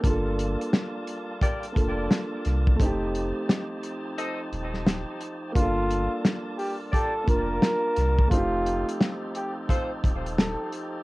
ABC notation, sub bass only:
X:1
M:4/4
L:1/16
Q:"Swing 16ths" 1/4=87
K:Gm
V:1 name="Sub bass" clef=bass
G,,,3 z6 z F,,,2 z2 C,,2 | F,,,3 z6 z E,,,3 z3 | G,,,3 z6 z F,,,2 z2 C,,2 | F,,,3 z6 z E,,,3 z3 |]